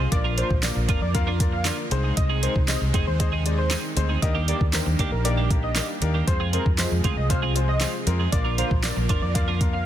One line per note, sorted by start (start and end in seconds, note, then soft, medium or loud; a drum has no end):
0.00 1.87 F3 medium
0.00 1.87 F4 medium
0.00 0.10 F4 medium
0.00 0.10 G#4 medium
0.11 0.41 A#1 loud
0.11 1.90 D3 medium
0.11 0.25 A#3 loud
0.11 1.90 A#3 medium
0.11 0.25 D4 medium
0.11 0.25 F4 loud
0.11 1.90 A#4 medium
0.11 0.25 A#4 medium
0.11 0.31 D5 loud
0.11 0.25 D5 loud
0.11 muted clean electric guitar stroke medium
0.11 kick loud
0.11 closed hi-hat loud
0.24 0.36 D4 medium
0.24 0.37 F4 medium
0.24 0.37 A#4 medium
0.37 0.51 A#3 medium
0.37 0.48 D4 medium
0.37 0.51 D4 medium
0.37 0.51 F4 medium
0.37 0.48 F4 medium
0.37 0.51 A#4 medium
0.37 0.49 A#4 medium
0.37 0.57 C5 medium
0.37 0.51 D5 medium
0.37 closed hi-hat medium
0.50 0.70 A#1 loud
0.50 muted clean electric guitar stroke soft
0.50 kick loud
0.63 0.76 A#3 medium
0.63 0.76 D4 medium
0.63 0.76 F4 medium
0.63 0.76 A#4 medium
0.63 0.73 D5 medium
0.63 0.76 D5 medium
0.63 snare medium
0.63 clap loud
0.63 closed hi-hat medium
0.63 tambourine medium
0.76 0.86 A#1 medium
0.76 muted clean electric guitar stroke medium
0.88 1.02 A#3 medium
0.88 1.02 D4 medium
0.88 1.02 F4 medium
0.88 1.01 F4 medium
0.88 1.02 A#4 medium
0.88 1.00 A#4 medium
0.88 1.02 D5 medium
0.88 kick medium
0.88 closed hi-hat medium
1.01 1.69 F2 loud
1.01 1.12 D5 medium
1.01 muted clean electric guitar stroke medium
1.14 1.27 A#3 loud
1.14 1.27 D4 medium
1.14 1.28 F4 medium
1.14 1.28 A#4 loud
1.14 1.24 F5 medium
1.14 1.28 F5 loud
1.14 muted clean electric guitar stroke soft
1.14 kick medium
1.14 closed hi-hat medium
1.27 1.39 D4 medium
1.27 1.39 F4 medium
1.27 1.40 A#4 medium
1.40 1.53 A#3 medium
1.40 1.53 D4 medium
1.40 1.53 F4 medium
1.40 1.53 A#4 medium
1.40 1.53 D5 medium
1.40 kick loud
1.40 closed hi-hat medium
1.53 1.73 F5 medium
1.53 muted clean electric guitar stroke medium
1.65 1.79 A#3 medium
1.65 1.79 D4 medium
1.65 1.79 F4 medium
1.65 1.78 F4 loud
1.65 1.79 A#4 medium
1.65 1.77 A#4 loud
1.65 1.79 D5 medium
1.65 snare medium
1.65 clap loud
1.65 closed hi-hat medium
1.65 tambourine medium
1.78 muted clean electric guitar stroke soft
1.91 2.11 C2 loud
1.91 4.20 C3 medium
1.91 6.23 D#3 medium
1.91 2.32 G#3 loud
1.91 4.20 G#3 medium
1.91 2.33 C4 medium
1.91 4.20 D#4 medium
1.91 2.33 D#4 medium
1.91 4.20 G#4 medium
1.91 2.33 G#4 medium
1.91 2.33 C5 loud
1.91 muted clean electric guitar stroke medium
1.91 closed hi-hat medium
2.04 2.15 C4 medium
2.04 2.15 D#4 medium
2.04 2.15 G#4 medium
2.17 2.46 C2 loud
2.17 2.37 D#5 loud
2.17 kick loud
2.17 closed hi-hat loud
2.30 2.41 C4 medium
2.30 2.42 D#4 medium
2.30 2.42 G#4 loud
2.42 2.56 G#3 medium
2.42 2.53 C4 medium
2.42 2.56 C4 medium
2.42 2.54 D#4 medium
2.42 2.56 D#4 medium
2.42 2.56 G#4 medium
2.42 2.54 G#4 medium
2.42 2.56 A#4 medium
2.42 2.62 C5 medium
2.42 closed hi-hat medium
2.55 2.75 C2 loud
2.55 muted clean electric guitar stroke soft
2.55 kick loud
2.68 2.82 G#3 medium
2.68 2.82 C4 medium
2.68 2.82 D#4 medium
2.68 2.82 G#4 medium
2.68 2.82 C5 medium
2.68 2.78 D#5 medium
2.68 snare medium
2.68 clap loud
2.68 closed hi-hat medium
2.68 tambourine medium
2.81 2.91 C2 medium
2.81 muted clean electric guitar stroke medium
2.94 3.04 F1 loud
2.94 3.07 G#3 medium
2.94 3.08 C4 medium
2.94 3.07 C4 medium
2.94 3.07 D#4 medium
2.94 3.06 D#4 medium
2.94 3.07 G#4 medium
2.94 3.06 G#4 loud
2.94 3.07 C5 medium
2.94 kick medium
2.94 closed hi-hat medium
3.07 3.74 D#2 loud
3.07 3.17 C5 medium
3.19 3.33 G#3 loud
3.19 3.33 C4 medium
3.19 3.33 D#4 medium
3.19 3.33 G#4 medium
3.19 3.33 C5 loud
3.19 3.29 D#5 medium
3.19 muted clean electric guitar stroke soft
3.19 kick medium
3.19 closed hi-hat medium
3.32 3.44 C4 medium
3.32 3.44 D#4 medium
3.32 3.45 G#4 medium
3.45 3.58 G#3 medium
3.45 3.58 C4 medium
3.45 3.58 D#4 medium
3.45 3.59 G#4 medium
3.45 3.59 D5 medium
3.45 muted clean electric guitar stroke medium
3.45 closed hi-hat medium
3.58 3.78 C5 medium
3.58 muted clean electric guitar stroke medium
3.71 3.84 G#3 medium
3.71 3.84 C4 medium
3.71 3.84 D#4 medium
3.71 3.83 D#4 loud
3.71 3.84 G#4 medium
3.71 3.83 G#4 medium
3.71 3.84 C5 medium
3.71 snare medium
3.71 clap loud
3.71 closed hi-hat medium
3.71 tambourine medium
3.84 muted clean electric guitar stroke medium
3.96 4.16 D2 loud
3.96 4.10 G#3 loud
3.96 4.10 C4 medium
3.96 4.10 D#4 medium
3.96 4.10 G#4 medium
3.96 4.10 C5 loud
3.96 muted clean electric guitar stroke soft
3.96 closed hi-hat medium
4.09 4.21 C4 medium
4.09 4.20 D#4 medium
4.09 4.20 G#4 medium
4.22 4.51 D#2 loud
4.22 6.26 G3 medium
4.22 4.35 A#3 loud
4.22 6.26 A#3 medium
4.22 4.35 D4 medium
4.22 6.26 D4 medium
4.22 4.35 D#4 medium
4.22 4.36 G4 medium
4.22 6.26 G4 medium
4.22 4.35 A#4 loud
4.22 4.42 D#5 loud
4.22 muted clean electric guitar stroke soft
4.22 kick loud
4.22 closed hi-hat loud
4.35 4.46 A#3 medium
4.35 4.47 D4 medium
4.35 4.48 G4 medium
4.48 4.58 A#3 medium
4.48 4.61 A#3 medium
4.48 4.61 D4 medium
4.48 4.59 D4 medium
4.48 4.61 D#4 medium
4.48 4.61 G4 medium
4.48 4.59 G4 medium
4.48 4.61 A#4 medium
4.48 4.68 D5 medium
4.48 closed hi-hat medium
4.61 4.80 D#2 medium
4.61 kick loud
4.73 4.87 A#3 medium
4.73 4.87 D4 medium
4.73 4.87 D#4 medium
4.73 4.87 G4 medium
4.73 4.87 A#4 medium
4.73 4.83 C5 medium
4.73 snare medium
4.73 clap loud
4.73 closed hi-hat medium
4.73 tambourine medium
4.86 4.96 D#2 medium
4.86 muted clean electric guitar stroke medium
4.99 5.13 A#3 medium
4.99 5.12 A#3 medium
4.99 5.12 D4 medium
4.99 5.12 D#4 medium
4.99 5.12 G4 medium
4.99 5.11 G4 medium
4.99 5.12 A#4 medium
4.99 kick loud
4.99 closed hi-hat medium
5.12 5.79 A#1 loud
5.12 5.22 A#4 medium
5.12 muted clean electric guitar stroke medium
5.25 5.38 A#3 loud
5.25 5.38 D4 medium
5.25 5.38 D#4 loud
5.25 5.38 G4 medium
5.25 5.38 A#4 loud
5.25 5.35 D5 medium
5.25 muted clean electric guitar stroke soft
5.25 closed hi-hat medium
5.37 5.49 A#3 medium
5.37 5.50 D4 medium
5.37 5.50 G4 medium
5.50 5.63 A#3 medium
5.50 5.64 D4 medium
5.50 5.64 D#4 medium
5.50 5.64 G4 medium
5.50 5.64 A#4 medium
5.50 muted clean electric guitar stroke soft
5.50 kick loud
5.50 closed hi-hat medium
5.63 5.83 D#5 medium
5.63 muted clean electric guitar stroke medium
5.75 5.90 A#3 medium
5.75 5.89 A#3 medium
5.75 5.89 D4 medium
5.75 5.88 D4 loud
5.75 5.89 D#4 medium
5.75 5.89 G4 medium
5.75 5.88 G4 loud
5.75 5.89 A#4 medium
5.75 snare medium
5.75 clap loud
5.75 closed hi-hat medium
5.75 tambourine loud
5.89 muted clean electric guitar stroke medium
6.01 6.21 D#2 loud
6.01 6.15 A#3 medium
6.01 6.15 D4 medium
6.01 6.15 D#4 medium
6.01 6.15 G4 medium
6.01 6.15 A#4 loud
6.01 muted clean electric guitar stroke soft
6.01 closed hi-hat medium
6.14 6.26 A#3 medium
6.14 6.25 D4 medium
6.14 6.25 G4 medium
6.27 6.56 F2 loud
6.27 8.30 C3 medium
6.27 9.86 F3 medium
6.27 6.40 G#3 loud
6.27 8.31 G#3 medium
6.27 6.40 C4 loud
6.27 6.40 F4 medium
6.27 9.86 F4 medium
6.27 8.30 G#4 medium
6.27 6.41 G#4 medium
6.27 6.47 C5 loud
6.27 6.41 C5 loud
6.27 muted clean electric guitar stroke soft
6.27 kick loud
6.27 closed hi-hat loud
6.40 6.52 C4 medium
6.40 6.53 F4 medium
6.40 6.53 G#4 medium
6.53 6.66 G#3 medium
6.53 6.66 C4 medium
6.53 6.64 C4 medium
6.53 6.66 F4 medium
6.53 6.64 F4 medium
6.53 6.66 G#4 medium
6.53 6.64 G#4 medium
6.53 6.73 A#4 medium
6.53 6.66 C5 medium
6.53 closed hi-hat medium
6.66 6.85 F2 medium
6.66 muted clean electric guitar stroke medium
6.66 kick medium
6.78 6.92 G#3 medium
6.78 6.92 C4 medium
6.78 6.92 F4 medium
6.78 6.92 G#4 medium
6.78 6.88 C5 medium
6.78 6.92 D#5 medium
6.78 snare medium
6.78 clap loud
6.78 closed hi-hat medium
6.78 tambourine medium
6.91 7.01 F2 medium
6.91 muted clean electric guitar stroke soft
7.04 7.14 D2 loud
7.04 7.17 G#3 medium
7.04 7.18 C4 medium
7.04 7.17 C4 medium
7.04 7.17 F4 medium
7.04 7.17 G#4 medium
7.04 7.16 G#4 medium
7.04 7.17 C5 medium
7.04 kick loud
7.04 closed hi-hat medium
7.17 7.85 C2 loud
7.17 7.27 D#5 medium
7.17 muted clean electric guitar stroke medium
7.30 7.43 G#3 loud
7.30 7.43 C4 loud
7.30 7.43 F4 medium
7.30 7.43 G#4 medium
7.30 7.43 C5 loud
7.30 7.40 F5 medium
7.30 muted clean electric guitar stroke soft
7.30 kick medium
7.30 closed hi-hat medium
7.42 7.54 C4 medium
7.42 7.54 F4 medium
7.42 7.55 G#4 medium
7.55 7.69 G#3 medium
7.55 7.69 C4 medium
7.55 7.69 F4 medium
7.55 7.69 G#4 medium
7.55 7.69 C5 medium
7.55 muted clean electric guitar stroke soft
7.55 closed hi-hat medium
7.68 7.88 D#5 medium
7.68 muted clean electric guitar stroke soft
7.80 7.94 G#3 medium
7.80 7.95 C4 medium
7.80 7.94 C4 medium
7.80 7.93 F4 medium
7.80 7.94 F4 medium
7.80 7.95 G#4 medium
7.80 7.93 G#4 loud
7.80 7.95 C5 medium
7.80 snare loud
7.80 clap loud
7.80 closed hi-hat medium
7.80 tambourine medium
7.94 muted clean electric guitar stroke soft
8.07 8.26 F2 loud
8.07 8.20 G#3 medium
8.07 8.20 C4 medium
8.07 8.20 F4 medium
8.07 8.20 G#4 medium
8.07 8.20 A#4 loud
8.07 muted clean electric guitar stroke soft
8.07 closed hi-hat medium
8.19 8.31 C4 medium
8.19 8.31 F4 medium
8.19 8.30 G#4 medium
8.32 8.61 A#1 loud
8.32 9.86 D3 medium
8.32 8.46 A#3 loud
8.32 9.86 A#3 medium
8.32 8.46 D4 medium
8.32 8.46 F4 medium
8.32 8.46 A#4 medium
8.32 9.86 A#4 medium
8.32 8.52 D5 loud
8.32 8.46 D5 loud
8.32 muted clean electric guitar stroke soft
8.32 kick loud
8.32 closed hi-hat loud
8.45 8.57 D4 medium
8.45 8.57 F4 medium
8.45 8.58 A#4 medium
8.58 8.71 A#3 medium
8.58 8.69 D4 medium
8.58 8.71 D4 medium
8.58 8.71 F4 medium
8.58 8.69 F4 medium
8.58 8.71 A#4 medium
8.58 8.69 A#4 medium
8.58 8.78 C5 loud
8.58 8.71 F5 medium
8.58 closed hi-hat medium
8.71 8.90 A#1 loud
8.71 muted clean electric guitar stroke soft
8.71 kick medium
8.83 8.97 A#3 medium
8.83 8.97 D4 medium
8.83 8.97 F4 medium
8.83 8.97 A#4 medium
8.83 8.93 D5 medium
8.83 8.97 D5 medium
8.83 snare medium
8.83 clap loud
8.83 closed hi-hat medium
8.83 tambourine medium
8.96 9.06 A#1 medium
8.96 muted clean electric guitar stroke soft
9.09 9.22 A#3 medium
9.09 9.23 D4 medium
9.09 9.23 F4 medium
9.09 9.22 F4 loud
9.09 9.23 A#4 medium
9.09 9.21 A#4 loud
9.09 9.23 D5 medium
9.09 kick loud
9.09 closed hi-hat medium
9.22 9.86 F2 loud
9.22 9.32 D5 medium
9.22 muted clean electric guitar stroke medium
9.35 9.48 A#3 loud
9.35 9.48 D4 medium
9.35 9.48 F4 medium
9.35 9.48 A#4 loud
9.35 9.48 D5 loud
9.35 9.45 F5 medium
9.35 muted clean electric guitar stroke soft
9.35 kick medium
9.35 closed hi-hat medium
9.48 9.60 D4 medium
9.48 9.60 F4 medium
9.48 9.61 A#4 medium
9.61 9.74 A#3 medium
9.61 9.74 D4 medium
9.61 9.74 F4 medium
9.61 9.74 A#4 medium
9.61 9.74 F5 medium
9.61 muted clean electric guitar stroke soft
9.61 kick medium
9.61 closed hi-hat medium
9.73 9.86 F5 medium
9.73 muted clean electric guitar stroke medium